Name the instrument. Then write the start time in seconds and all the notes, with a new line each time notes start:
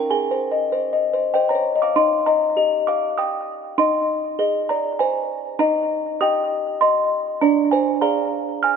music box
0.10 G#4 G#5
0.31 C5
0.52 D#5
0.72 C5
0.93 D#5
1.14 C5
1.34 C5 D#5 G5
1.49 C#5 A#5
1.55 C5
1.75 D#5
1.82 F5 D6
1.96 D#4 D#5 C6
2.26 D#5 A#5
2.57 G4 D#5
2.87 F5 D6
3.18 G5 D#6
3.78 D#4 D#5 C6
4.39 G#4 D#5
4.69 D5 A#5
4.99 C5 G#5
5.59 D#4 D#5 A#5
6.21 G4 D#5 G5 D#6
6.81 D#5 C6
7.41 D4 D5 A#5
7.71 C5 G#5
8.01 G#4 D5 F5 A#5
8.63 G#5 F6